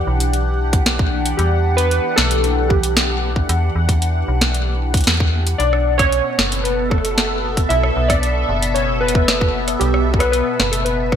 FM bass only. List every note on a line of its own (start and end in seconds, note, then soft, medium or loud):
0.07 1.34 B1 medium
1.39 2.00 E2 loud
2.18 3.45 B1 medium
3.49 3.70 E2 loud
3.76 4.24 E2 medium
4.28 5.07 B1 medium
5.07 5.55 E2 loud
5.60 6.21 B1 medium
6.39 7.66 F#1 medium
7.70 7.91 B1 medium
7.96 8.45 B1 medium
8.49 9.76 F#1 medium
9.81 10.42 B1 medium
10.60 11.16 F#1 medium